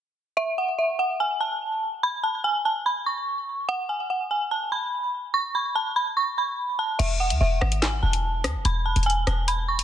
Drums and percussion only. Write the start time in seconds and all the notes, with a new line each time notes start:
6.99 closed hi-hat, crash
7.30 closed hi-hat
7.62 cross-stick
7.72 closed hi-hat
7.82 snare, clap, closed hi-hat
8.13 closed hi-hat
8.44 cross-stick, closed hi-hat
8.65 closed hi-hat
8.96 closed hi-hat
9.03 closed hi-hat
9.10 closed hi-hat
9.27 cross-stick, closed hi-hat
9.48 closed hi-hat
9.79 closed hi-hat